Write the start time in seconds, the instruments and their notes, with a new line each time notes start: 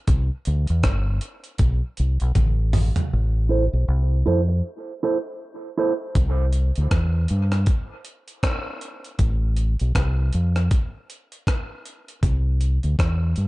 0.07 fingered electric bass C2, kick, closed hi-hat
0.45 fingered electric bass D2, closed hi-hat
0.67 fingered electric bass E2, closed hi-hat
0.83 fingered electric bass G1, kick, cross-stick, closed hi-hat
1.21 closed hi-hat
1.44 closed hi-hat
1.58 fingered electric bass B1, kick, closed hi-hat
1.97 fingered electric bass C2, closed hi-hat
2.20 fingered electric bass B1, closed hi-hat
2.35 fingered electric bass A1, kick, closed hi-hat, high tom
2.73 mid tom, open hi-hat
2.96 closed hi-hat, floor tom
3.13 fingered electric bass A1
3.49 clean electric guitar E4 A4 C5
3.73 fingered electric bass B1
3.88 fingered electric bass C2
4.26 fingered electric bass F2, clean electric guitar E4 A4 C5
4.49 muted clean electric guitar stroke
5.03 clean electric guitar E4 A4 C5
5.78 clean electric guitar E4 A4 C5
6.15 fingered electric bass C2, kick, closed hi-hat
6.53 closed hi-hat
6.76 fingered electric bass D2, closed hi-hat
6.91 fingered electric bass E2, kick, cross-stick, closed hi-hat
7.28 fingered electric bass G2, closed hi-hat
7.52 cross-stick, closed hi-hat
7.66 kick, closed hi-hat
8.05 closed hi-hat
8.28 closed hi-hat
8.43 kick, cross-stick, closed hi-hat
8.81 closed hi-hat
9.04 closed hi-hat
9.19 fingered electric bass A1, kick, closed hi-hat
9.56 closed hi-hat
9.79 fingered electric bass B1, closed hi-hat
9.95 fingered electric bass C2, kick, cross-stick, closed hi-hat
10.33 fingered electric bass F2, closed hi-hat
10.56 cross-stick, closed hi-hat
10.71 kick, closed hi-hat
11.10 closed hi-hat
11.32 closed hi-hat
11.47 kick, cross-stick, closed hi-hat
11.86 closed hi-hat
12.08 closed hi-hat
12.23 fingered electric bass C2, kick, closed hi-hat
12.61 closed hi-hat
12.83 fingered electric bass D2, closed hi-hat
12.99 fingered electric bass E2, kick, cross-stick, closed hi-hat
13.36 fingered electric bass G2, closed hi-hat